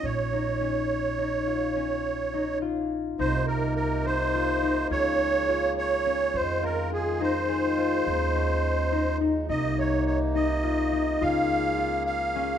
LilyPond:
<<
  \new Staff \with { instrumentName = "Accordion" } { \time 11/8 \key bes \minor \tempo 4 = 105 des''1~ des''8 r4 | c''8 bes'8 bes'8 c''4. des''4. des''4 | c''8 bes'8 aes'8 c''2.~ c''8 r8 | ees''8 des''8 des''8 ees''4. f''4. f''4 | }
  \new Staff \with { instrumentName = "Harp" } { \time 11/8 \key bes \minor des'8 ees'8 des'4 ees'8 f'8 des'4 ees'8 f'4 | ees'4 r8 ees'8 f'8 ees'8 f'4 f'4 des'8~ | des'8 f'8 f'8 ees'8 aes'8 f'4 des'4 ees'8 ees'8 | ees'4 r8 ees'8 f'8 ees'8 f'4 f'4 des'8 | }
  \new Staff \with { instrumentName = "Harmonium" } { \time 11/8 \key bes \minor << { r1 r4. | <c ees'>2. <des aes'>2~ <des aes'>8 | <ees f'>2. <des ees'>2~ <des ees'>8 | <c ees'>2. <des aes'>2~ <des aes'>8 | } \\ { r1 r4. | bes1~ bes4. | aes1~ aes4. | bes2. bes2~ bes8 | } >> }
  \new Staff \with { instrumentName = "Upright bass" } { \clef bass \time 11/8 \key bes \minor bes,,1~ bes,,4. | c,2. des,2~ des,8 | f,2. ees,2~ ees,8 | c,2. des,2~ des,8 | }
>>